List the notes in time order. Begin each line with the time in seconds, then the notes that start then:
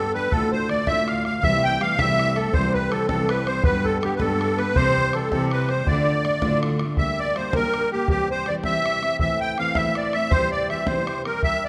Already playing: G2 G3 B3 D4 G4 A4
0.14 B3 D4 G4 B4
0.31 D2 A2 D3 A3 D4 F4 A4, bodhran
0.52 C5, bodhran
0.69 D3 A3 D4 F4 D5, bodhran
0.87 D2 A2 D3 A3 D4 F4 E5, bodhran
1.07 F5, bodhran
1.25 D3 A3 D4 F4 F5, bodhran
1.43 C2 C3 E3 G3 A3 G4 E5, bodhran
1.64 G5
1.81 E3 G3 A3 G4 F5, bodhran
1.98 C2 C3 E3 G3 A3 G4 E5, bodhran
2.19 bodhran
2.36 G3 A3 G4 A4, bodhran
2.53 C2 C3 E3 G3 C4 G4 C5, bodhran
2.74 B4, bodhran
2.91 E3 G3 C4 G4 A4, bodhran
3.08 C2 C3 E3 G3 C4 G4 A4, bodhran
3.29 B4, bodhran
3.47 G3 C4 C5, bodhran
3.64 G2 G3 B3 D4 G4 B4, bodhran
3.84 A4, bodhran
4.00 G3 G4 A4, bodhran
4.04 B3 D4 G4
4.16 B4, bodhran
4.20 G2 G3 B3 D4 G4 A4
4.41 bodhran
4.58 B3 D4 G4 B4, bodhran
4.76 C3 E3 G3 C4 G4 C5, bodhran
4.97 bodhran
5.13 E3 G3 C4 G4 A4, bodhran
5.31 C3 E3 G3 C4 G4 A4, bodhran
5.51 B4, bodhran
5.69 G3 C4 G4 C5, bodhran
5.86 D2 A2 D3 A3 D4 F4 D5, bodhran
6.07 bodhran
6.24 D3 A3 D4 F4, bodhran
6.42 D2 A2 D3 A3 D4 F4, bodhran
6.63 bodhran
6.79 D3 A3 D4 F4, bodhran
6.97 G3 A#3 D4 G4 E5, bodhran
7.19 D5
7.36 G3 A#3 D4 G4 C5, bodhran
7.53 G3 A#3 D4 G4 A#4, bodhran
7.74 bodhran
7.92 A#3 D4 G4
8.08 C3 E3 G3 C4 G4, bodhran
8.31 C5
8.46 E3 G3 C4 G4 D5, bodhran
8.63 C3 E3 G3 C4 G4 E5, bodhran
8.86 bodhran
9.02 G3 C4 G4, bodhran
9.19 A2 E3 A3 C4 E4 E5, bodhran
9.41 G5
9.58 E3 A3 C4 E4 F5, bodhran
9.75 A2 E3 A3 C4 E4 E5, bodhran
9.95 D5, bodhran
10.13 A3 C4 E4 E5, bodhran
10.30 C3 E3 G3 C4 G4 C5, bodhran
10.52 D5
10.69 E3 G3 C4 G4 E5, bodhran
10.86 C3 E3 G3 C4 G4 C5, bodhran
11.07 bodhran
11.25 G3 C4 G4 A#4, bodhran
11.43 G3 A#3 D4 G4 E5, bodhran
11.65 D5